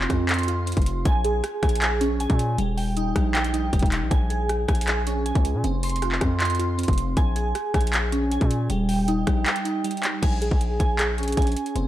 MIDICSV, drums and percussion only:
0, 0, Header, 1, 2, 480
1, 0, Start_track
1, 0, Tempo, 382166
1, 1324, Time_signature, 4, 2, 24, 8
1, 14917, End_track
2, 0, Start_track
2, 0, Title_t, "Drums"
2, 5, Note_on_c, 9, 39, 71
2, 124, Note_on_c, 9, 36, 90
2, 125, Note_on_c, 9, 37, 101
2, 125, Note_on_c, 9, 42, 77
2, 130, Note_off_c, 9, 39, 0
2, 250, Note_off_c, 9, 36, 0
2, 250, Note_off_c, 9, 37, 0
2, 251, Note_off_c, 9, 42, 0
2, 364, Note_on_c, 9, 39, 119
2, 364, Note_on_c, 9, 42, 84
2, 425, Note_off_c, 9, 42, 0
2, 425, Note_on_c, 9, 42, 73
2, 485, Note_off_c, 9, 42, 0
2, 485, Note_on_c, 9, 42, 61
2, 489, Note_off_c, 9, 39, 0
2, 544, Note_off_c, 9, 42, 0
2, 544, Note_on_c, 9, 42, 47
2, 604, Note_off_c, 9, 42, 0
2, 604, Note_on_c, 9, 42, 73
2, 730, Note_off_c, 9, 42, 0
2, 843, Note_on_c, 9, 42, 72
2, 905, Note_off_c, 9, 42, 0
2, 905, Note_on_c, 9, 42, 60
2, 964, Note_on_c, 9, 36, 102
2, 965, Note_off_c, 9, 42, 0
2, 965, Note_on_c, 9, 42, 52
2, 1025, Note_off_c, 9, 42, 0
2, 1025, Note_on_c, 9, 42, 42
2, 1084, Note_off_c, 9, 42, 0
2, 1084, Note_on_c, 9, 42, 81
2, 1090, Note_off_c, 9, 36, 0
2, 1210, Note_off_c, 9, 42, 0
2, 1323, Note_on_c, 9, 42, 70
2, 1324, Note_on_c, 9, 36, 115
2, 1449, Note_off_c, 9, 42, 0
2, 1450, Note_off_c, 9, 36, 0
2, 1564, Note_on_c, 9, 42, 67
2, 1689, Note_off_c, 9, 42, 0
2, 1805, Note_on_c, 9, 37, 76
2, 1805, Note_on_c, 9, 42, 73
2, 1930, Note_off_c, 9, 42, 0
2, 1931, Note_off_c, 9, 37, 0
2, 2043, Note_on_c, 9, 37, 101
2, 2044, Note_on_c, 9, 36, 87
2, 2044, Note_on_c, 9, 42, 48
2, 2123, Note_off_c, 9, 42, 0
2, 2123, Note_on_c, 9, 42, 65
2, 2169, Note_off_c, 9, 37, 0
2, 2170, Note_off_c, 9, 36, 0
2, 2204, Note_off_c, 9, 42, 0
2, 2204, Note_on_c, 9, 42, 80
2, 2283, Note_on_c, 9, 39, 117
2, 2284, Note_off_c, 9, 42, 0
2, 2284, Note_on_c, 9, 42, 80
2, 2409, Note_off_c, 9, 39, 0
2, 2409, Note_off_c, 9, 42, 0
2, 2524, Note_on_c, 9, 42, 76
2, 2650, Note_off_c, 9, 42, 0
2, 2764, Note_on_c, 9, 42, 69
2, 2885, Note_off_c, 9, 42, 0
2, 2885, Note_on_c, 9, 36, 100
2, 2885, Note_on_c, 9, 42, 40
2, 3005, Note_off_c, 9, 42, 0
2, 3005, Note_on_c, 9, 42, 87
2, 3010, Note_off_c, 9, 36, 0
2, 3131, Note_off_c, 9, 42, 0
2, 3245, Note_on_c, 9, 42, 72
2, 3371, Note_off_c, 9, 42, 0
2, 3486, Note_on_c, 9, 46, 75
2, 3611, Note_off_c, 9, 46, 0
2, 3726, Note_on_c, 9, 42, 74
2, 3852, Note_off_c, 9, 42, 0
2, 3965, Note_on_c, 9, 36, 91
2, 3965, Note_on_c, 9, 37, 102
2, 3966, Note_on_c, 9, 42, 76
2, 4091, Note_off_c, 9, 36, 0
2, 4091, Note_off_c, 9, 37, 0
2, 4091, Note_off_c, 9, 42, 0
2, 4205, Note_on_c, 9, 39, 115
2, 4206, Note_on_c, 9, 42, 71
2, 4326, Note_off_c, 9, 42, 0
2, 4326, Note_on_c, 9, 42, 68
2, 4331, Note_off_c, 9, 39, 0
2, 4445, Note_off_c, 9, 42, 0
2, 4445, Note_on_c, 9, 42, 78
2, 4571, Note_off_c, 9, 42, 0
2, 4684, Note_on_c, 9, 42, 70
2, 4685, Note_on_c, 9, 36, 96
2, 4764, Note_off_c, 9, 42, 0
2, 4764, Note_on_c, 9, 42, 55
2, 4805, Note_off_c, 9, 36, 0
2, 4805, Note_on_c, 9, 36, 100
2, 4844, Note_off_c, 9, 42, 0
2, 4844, Note_on_c, 9, 42, 43
2, 4923, Note_on_c, 9, 39, 92
2, 4924, Note_off_c, 9, 42, 0
2, 4924, Note_on_c, 9, 42, 79
2, 4930, Note_off_c, 9, 36, 0
2, 5049, Note_off_c, 9, 39, 0
2, 5050, Note_off_c, 9, 42, 0
2, 5163, Note_on_c, 9, 42, 70
2, 5164, Note_on_c, 9, 36, 116
2, 5289, Note_off_c, 9, 42, 0
2, 5290, Note_off_c, 9, 36, 0
2, 5404, Note_on_c, 9, 42, 69
2, 5529, Note_off_c, 9, 42, 0
2, 5644, Note_on_c, 9, 42, 73
2, 5645, Note_on_c, 9, 37, 76
2, 5770, Note_off_c, 9, 37, 0
2, 5770, Note_off_c, 9, 42, 0
2, 5884, Note_on_c, 9, 36, 85
2, 5884, Note_on_c, 9, 37, 101
2, 5884, Note_on_c, 9, 42, 49
2, 5964, Note_off_c, 9, 42, 0
2, 5964, Note_on_c, 9, 42, 65
2, 6010, Note_off_c, 9, 36, 0
2, 6010, Note_off_c, 9, 37, 0
2, 6044, Note_off_c, 9, 42, 0
2, 6044, Note_on_c, 9, 42, 81
2, 6123, Note_on_c, 9, 39, 115
2, 6124, Note_off_c, 9, 42, 0
2, 6124, Note_on_c, 9, 42, 82
2, 6249, Note_off_c, 9, 39, 0
2, 6249, Note_off_c, 9, 42, 0
2, 6364, Note_on_c, 9, 42, 72
2, 6490, Note_off_c, 9, 42, 0
2, 6604, Note_on_c, 9, 42, 69
2, 6724, Note_off_c, 9, 42, 0
2, 6724, Note_on_c, 9, 36, 102
2, 6724, Note_on_c, 9, 42, 42
2, 6843, Note_off_c, 9, 42, 0
2, 6843, Note_on_c, 9, 42, 85
2, 6850, Note_off_c, 9, 36, 0
2, 6969, Note_off_c, 9, 42, 0
2, 7084, Note_on_c, 9, 42, 70
2, 7210, Note_off_c, 9, 42, 0
2, 7323, Note_on_c, 9, 42, 58
2, 7323, Note_on_c, 9, 46, 73
2, 7403, Note_off_c, 9, 42, 0
2, 7403, Note_on_c, 9, 42, 59
2, 7449, Note_off_c, 9, 46, 0
2, 7483, Note_off_c, 9, 42, 0
2, 7483, Note_on_c, 9, 42, 58
2, 7563, Note_off_c, 9, 42, 0
2, 7563, Note_on_c, 9, 42, 72
2, 7564, Note_on_c, 9, 37, 75
2, 7683, Note_on_c, 9, 39, 73
2, 7689, Note_off_c, 9, 37, 0
2, 7689, Note_off_c, 9, 42, 0
2, 7802, Note_on_c, 9, 37, 102
2, 7802, Note_on_c, 9, 42, 77
2, 7804, Note_on_c, 9, 36, 89
2, 7809, Note_off_c, 9, 39, 0
2, 7927, Note_off_c, 9, 37, 0
2, 7928, Note_off_c, 9, 42, 0
2, 7929, Note_off_c, 9, 36, 0
2, 8042, Note_on_c, 9, 39, 118
2, 8042, Note_on_c, 9, 42, 83
2, 8103, Note_off_c, 9, 42, 0
2, 8103, Note_on_c, 9, 42, 71
2, 8163, Note_off_c, 9, 42, 0
2, 8163, Note_on_c, 9, 42, 59
2, 8167, Note_off_c, 9, 39, 0
2, 8223, Note_off_c, 9, 42, 0
2, 8223, Note_on_c, 9, 42, 48
2, 8284, Note_off_c, 9, 42, 0
2, 8284, Note_on_c, 9, 42, 76
2, 8409, Note_off_c, 9, 42, 0
2, 8525, Note_on_c, 9, 42, 69
2, 8583, Note_off_c, 9, 42, 0
2, 8583, Note_on_c, 9, 42, 60
2, 8643, Note_off_c, 9, 42, 0
2, 8643, Note_on_c, 9, 42, 53
2, 8644, Note_on_c, 9, 36, 103
2, 8703, Note_off_c, 9, 42, 0
2, 8703, Note_on_c, 9, 42, 42
2, 8763, Note_off_c, 9, 42, 0
2, 8763, Note_on_c, 9, 42, 80
2, 8769, Note_off_c, 9, 36, 0
2, 8888, Note_off_c, 9, 42, 0
2, 9002, Note_on_c, 9, 42, 72
2, 9004, Note_on_c, 9, 36, 114
2, 9128, Note_off_c, 9, 42, 0
2, 9129, Note_off_c, 9, 36, 0
2, 9243, Note_on_c, 9, 42, 72
2, 9368, Note_off_c, 9, 42, 0
2, 9484, Note_on_c, 9, 37, 74
2, 9484, Note_on_c, 9, 42, 72
2, 9610, Note_off_c, 9, 37, 0
2, 9610, Note_off_c, 9, 42, 0
2, 9724, Note_on_c, 9, 36, 88
2, 9724, Note_on_c, 9, 37, 102
2, 9725, Note_on_c, 9, 42, 47
2, 9804, Note_off_c, 9, 42, 0
2, 9804, Note_on_c, 9, 42, 64
2, 9850, Note_off_c, 9, 36, 0
2, 9850, Note_off_c, 9, 37, 0
2, 9884, Note_off_c, 9, 42, 0
2, 9884, Note_on_c, 9, 42, 77
2, 9964, Note_on_c, 9, 39, 114
2, 9965, Note_off_c, 9, 42, 0
2, 9965, Note_on_c, 9, 42, 81
2, 10090, Note_off_c, 9, 39, 0
2, 10090, Note_off_c, 9, 42, 0
2, 10204, Note_on_c, 9, 42, 75
2, 10329, Note_off_c, 9, 42, 0
2, 10444, Note_on_c, 9, 42, 72
2, 10564, Note_off_c, 9, 42, 0
2, 10564, Note_on_c, 9, 36, 99
2, 10564, Note_on_c, 9, 42, 42
2, 10684, Note_off_c, 9, 42, 0
2, 10684, Note_on_c, 9, 42, 86
2, 10690, Note_off_c, 9, 36, 0
2, 10810, Note_off_c, 9, 42, 0
2, 10924, Note_on_c, 9, 42, 74
2, 11049, Note_off_c, 9, 42, 0
2, 11163, Note_on_c, 9, 46, 76
2, 11289, Note_off_c, 9, 46, 0
2, 11404, Note_on_c, 9, 42, 72
2, 11529, Note_off_c, 9, 42, 0
2, 11643, Note_on_c, 9, 37, 102
2, 11644, Note_on_c, 9, 36, 92
2, 11644, Note_on_c, 9, 42, 78
2, 11769, Note_off_c, 9, 37, 0
2, 11769, Note_off_c, 9, 42, 0
2, 11770, Note_off_c, 9, 36, 0
2, 11884, Note_on_c, 9, 39, 116
2, 11884, Note_on_c, 9, 42, 69
2, 12004, Note_off_c, 9, 42, 0
2, 12004, Note_on_c, 9, 42, 68
2, 12009, Note_off_c, 9, 39, 0
2, 12125, Note_off_c, 9, 42, 0
2, 12125, Note_on_c, 9, 42, 73
2, 12251, Note_off_c, 9, 42, 0
2, 12365, Note_on_c, 9, 42, 71
2, 12445, Note_off_c, 9, 42, 0
2, 12445, Note_on_c, 9, 42, 58
2, 12524, Note_off_c, 9, 42, 0
2, 12524, Note_on_c, 9, 42, 42
2, 12602, Note_on_c, 9, 39, 92
2, 12603, Note_off_c, 9, 42, 0
2, 12603, Note_on_c, 9, 42, 81
2, 12728, Note_off_c, 9, 39, 0
2, 12729, Note_off_c, 9, 42, 0
2, 12844, Note_on_c, 9, 36, 109
2, 12844, Note_on_c, 9, 42, 67
2, 12844, Note_on_c, 9, 49, 92
2, 12970, Note_off_c, 9, 36, 0
2, 12970, Note_off_c, 9, 42, 0
2, 12970, Note_off_c, 9, 49, 0
2, 13084, Note_on_c, 9, 42, 70
2, 13204, Note_on_c, 9, 36, 92
2, 13210, Note_off_c, 9, 42, 0
2, 13325, Note_on_c, 9, 42, 69
2, 13330, Note_off_c, 9, 36, 0
2, 13451, Note_off_c, 9, 42, 0
2, 13564, Note_on_c, 9, 36, 88
2, 13564, Note_on_c, 9, 42, 78
2, 13690, Note_off_c, 9, 36, 0
2, 13690, Note_off_c, 9, 42, 0
2, 13804, Note_on_c, 9, 39, 114
2, 13804, Note_on_c, 9, 42, 79
2, 13930, Note_off_c, 9, 39, 0
2, 13930, Note_off_c, 9, 42, 0
2, 14044, Note_on_c, 9, 42, 44
2, 14105, Note_off_c, 9, 42, 0
2, 14105, Note_on_c, 9, 42, 56
2, 14164, Note_off_c, 9, 42, 0
2, 14164, Note_on_c, 9, 42, 65
2, 14223, Note_off_c, 9, 42, 0
2, 14223, Note_on_c, 9, 42, 76
2, 14284, Note_off_c, 9, 42, 0
2, 14284, Note_on_c, 9, 36, 98
2, 14284, Note_on_c, 9, 42, 69
2, 14344, Note_off_c, 9, 42, 0
2, 14344, Note_on_c, 9, 42, 60
2, 14405, Note_off_c, 9, 42, 0
2, 14405, Note_on_c, 9, 42, 50
2, 14410, Note_off_c, 9, 36, 0
2, 14466, Note_off_c, 9, 42, 0
2, 14466, Note_on_c, 9, 42, 40
2, 14526, Note_off_c, 9, 42, 0
2, 14526, Note_on_c, 9, 42, 78
2, 14646, Note_off_c, 9, 42, 0
2, 14646, Note_on_c, 9, 42, 47
2, 14765, Note_off_c, 9, 42, 0
2, 14765, Note_on_c, 9, 42, 71
2, 14891, Note_off_c, 9, 42, 0
2, 14917, End_track
0, 0, End_of_file